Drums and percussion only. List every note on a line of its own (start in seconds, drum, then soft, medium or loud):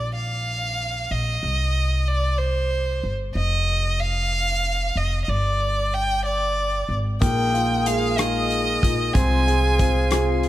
7.22 kick medium
7.22 closed hi-hat medium
7.55 closed hi-hat soft
7.86 closed hi-hat medium
8.18 cross-stick medium
8.18 closed hi-hat medium
8.50 closed hi-hat soft
8.83 kick medium
8.83 closed hi-hat medium
9.15 kick medium
9.15 closed hi-hat medium
9.48 closed hi-hat soft
9.79 kick medium
9.79 closed hi-hat medium
10.11 cross-stick medium
10.11 closed hi-hat medium
10.43 closed hi-hat soft